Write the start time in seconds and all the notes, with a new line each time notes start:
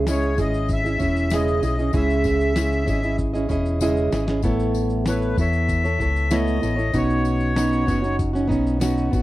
Already playing: C#2
0.07 C#3 G#3 C#4 E4 G#4 C#5 D#5, snare, tambourine, shaker
0.23 shaker
0.37 G#1 C#4 E4 G#4 D#5, kick, tambourine, shaker
0.42 D#5
0.54 shaker
0.69 kick, tambourine, shaker
0.73 E5
0.83 C#4 E4 G#4 D#5, shaker
0.99 E1 C#4 E4 G#4, kick, tambourine, shaker
1.16 shaker
1.30 C#3 G#3 C#4 E4 G#4 D#5, snare, tambourine, shaker
1.35 D#5
1.48 shaker
1.62 B1 C#4 E4 G#4 D#5, tambourine, shaker
1.78 C#4 E4 G#4 D#5, shaker
1.92 C#2 C#3 G#3 C#4 E4 G#4, kick, tambourine, shaker
1.96 E5
2.10 shaker
2.24 kick, snare, tambourine, shaker
2.40 shaker
2.55 C#3 G#3 C#4 E4 G#4, snare, tambourine, shaker
2.72 shaker
2.86 G#1 C#4 E4 G#4 D#5, kick, tambourine, shaker
3.03 C#4 E4 G#4 D#5, shaker
3.18 kick, shaker
3.34 C#4 E4 G#4 D#5, shaker
3.49 E1 C#4 E4 G#4 D#5, kick, tambourine, shaker
3.66 shaker
3.80 C#3 G#3 C#4 E4 G#4 D#5, tambourine, shaker
3.97 shaker
4.11 G#1 C#4 E4 G#4 D#5, snare, tambourine, shaker
4.27 C#4 E4 G#4 D#5, snare, shaker
4.42 A1 A3 B3 E4 A4 C#5, kick, tambourine, shaker
4.59 shaker
4.74 tambourine, shaker
4.90 shaker
5.05 A3 B3 E4 A4 B4 C#5, snare, tambourine, shaker
5.22 shaker
5.37 E2 B3 E4 A4 C#5 E5, kick, tambourine, shaker
5.53 shaker
5.69 kick, tambourine, shaker
5.84 E4 A4 C#5, shaker
5.99 C#2 B3 E4 A4 C#5, kick, shaker
6.16 shaker
6.31 A3 B3 E4 A4 C#5 D#5, snare, tambourine, shaker
6.47 shaker
6.60 A1 B3 E4 A4 C#5, tambourine, shaker
6.76 E4 A4 C#5, shaker
6.93 B1 B2 B3 C#4 D#4 F#4, kick, tambourine, shaker
6.97 C#5
7.10 shaker
7.25 tambourine, shaker
7.40 shaker
7.55 B2 B3 C#4 D#4 F#4, snare, tambourine, shaker
7.73 shaker
7.87 F#1 B3 C#4 D#4 F#4, kick, tambourine, shaker
8.02 C#4 D#4 F#4, shaker
8.19 kick, tambourine, shaker
8.33 C#4 D#4 F#4, shaker
8.48 B1 B3 C#4 D#4 F#4, kick, shaker
8.67 shaker
8.80 B2 B3 C#4 D#4 F#4, snare, tambourine, shaker
8.97 shaker
9.11 A1 B3 C#4 D#4 F#4, kick, tambourine, shaker